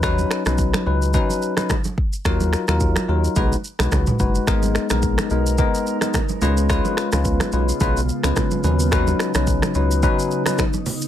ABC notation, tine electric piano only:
X:1
M:4/4
L:1/16
Q:"Swing 16ths" 1/4=108
K:Cblyd
V:1 name="Tine electric piano"
[G,DEc]3 [G,DEc]3 [G,DEc]2 [G,DEc]3 [G,DEc] z4 | [G,EFB]3 [G,EFB]3 [G,EFB]2 [A,EGc] z2 [A,EGc]3 [A,EGc]2 | [A,CEB]3 [A,CEB]3 [A,CEB]2 [A,CEB]3 [A,CEB] z2 [A,DFc]2 | [A,DFc]3 [A,DFc]3 [A,DFc]2 [A,DFc] z2 [A,DFc]3 [G,DEc]2 |
[G,DEc]3 [G,DEc]3 [G,DEc]2 [G,DEc]3 [G,DEc] z4 |]